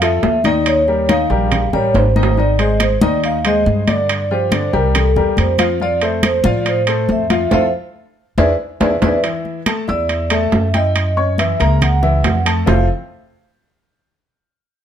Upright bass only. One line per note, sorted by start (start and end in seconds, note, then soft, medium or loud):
0.00 0.19 F2 loud
0.23 1.24 D#2 medium
1.30 1.70 A#1 loud
1.73 1.93 A1 medium
1.94 2.95 G#1 medium
3.02 3.62 D#2 medium
3.66 4.67 G2 medium
4.73 5.13 C2 loud
5.16 5.36 E2 medium
5.38 6.39 F2 medium
6.44 7.05 A2 loud
7.09 7.49 F2 medium
7.52 7.68 F2 medium
8.38 8.54 E2 loud
8.80 8.96 E2 medium
9.02 9.18 E2 loud
9.89 10.49 E2 loud
10.52 11.53 F#2 medium
11.60 12.20 C#2 loud
12.24 12.62 F2 medium
12.67 12.87 F1 medium